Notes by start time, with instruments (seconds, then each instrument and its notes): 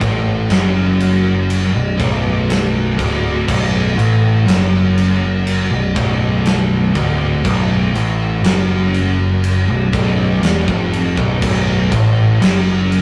0.01 picked electric bass A1, distorted electric guitar A2, kick, crash
0.49 picked electric bass F#1, distorted electric guitar F#2, snare, crash
1.00 crash
1.50 crash
1.73 picked electric bass B0, distorted electric guitar B1
1.99 picked electric bass B0, distorted electric guitar B1, kick, crash
2.50 snare, crash
2.97 picked electric bass D1, distorted electric guitar D2, kick, crash
3.47 picked electric bass B0, distorted electric guitar B1, kick, crash
3.96 picked electric bass A1, distorted electric guitar A2, crash
4.46 picked electric bass F#1, distorted electric guitar F#2, crash
4.50 snare
4.98 crash
5.47 crash
5.70 picked electric bass B0, distorted electric guitar B1
5.94 picked electric bass B0, distorted electric guitar B1, kick, crash
6.45 snare, crash
6.94 picked electric bass D1, distorted electric guitar D2, kick, crash
7.44 picked electric bass B0, distorted electric guitar B1, kick, crash
7.93 picked electric bass A1, distorted electric guitar A2, crash
8.42 picked electric bass F#1, distorted electric guitar F#2, snare, crash
8.94 crash
9.44 crash
9.67 picked electric bass B0, distorted electric guitar B1
9.93 picked electric bass B0, distorted electric guitar B1, kick, crash
10.41 picked electric bass E1, distorted electric guitar E2, snare, crash
10.65 picked electric bass F1, distorted electric guitar F2, kick
10.93 crash
11.16 picked electric bass B0, distorted electric guitar B1, kick
11.40 picked electric bass B0, distorted electric guitar B1, kick, crash
11.90 picked electric bass A1, distorted electric guitar A2, kick, crash
12.40 picked electric bass F#1, distorted electric guitar F#2, crash
12.44 snare
12.92 crash